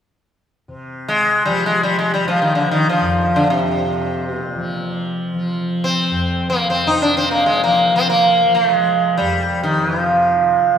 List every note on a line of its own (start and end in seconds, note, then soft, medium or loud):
0.68 3.78 C3 soft
1.08 1.45 G#3 medium
1.45 2.24 F3 medium
1.45 1.66 G3 medium
1.66 1.83 G#3 medium
1.83 1.98 G3 medium
1.99 2.13 G#3 medium
2.14 2.27 G3 medium
2.24 4.55 F3 soft
2.24 2.41 F3 medium
2.42 2.55 D#3 medium
2.55 2.71 D3 medium
2.71 2.89 D#3 medium
2.89 3.37 F3 medium
3.00 6.10 F2 soft
3.36 3.50 D3 medium
3.50 4.25 C3 medium
3.78 6.87 C3 soft
4.25 4.43 B2 medium
4.43 4.97 A#2 medium
4.55 5.34 F3 medium
5.34 7.65 F3 medium
5.84 6.49 C4 medium
6.10 9.20 F2 soft
6.50 6.70 A#3 medium
6.70 6.88 C4 medium
6.87 9.97 C3 soft
6.87 7.03 D#4 medium
7.02 7.16 D4 medium
7.17 7.31 C4 medium
7.31 7.45 A#3 medium
7.46 7.63 G#3 medium
7.64 8.42 F3 soft
7.64 7.95 A#3 medium
7.96 8.09 C4 medium
8.10 8.56 A#3 medium
8.42 10.75 F3 medium
8.55 8.74 A3 medium
8.74 9.17 G#3 medium
9.18 10.78 F2 soft
9.18 9.63 G3 medium
9.63 9.86 D#3 medium
9.86 10.00 E3 medium
9.98 10.78 C3 medium
9.98 10.78 F3 medium
10.75 10.78 F3 medium